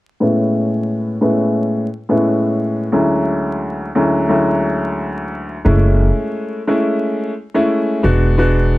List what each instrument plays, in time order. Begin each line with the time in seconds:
0.20 upright piano A2 G#3 B3 C#4 E4
1.21 upright piano A2 G#3 B3 C#4 E4
2.09 upright piano A2 G#3 B3 C#4 E4
2.92 upright piano D2 F#3 G#3 C#4 E4
3.95 upright piano D2 F#3 G#3 C#4 E4
4.29 upright piano D2 F#3 G#3 C#4 E4
5.65 upright bass F#1, upright piano G#3 A3 C#4 E4
6.67 upright piano G#3 A3 C#4 E4
7.54 upright piano G#3 A3 C#4 E4
8.03 upright bass E1, upright piano G#3 B3 D4 F#4
8.38 upright piano G#3 B3 D4 F#4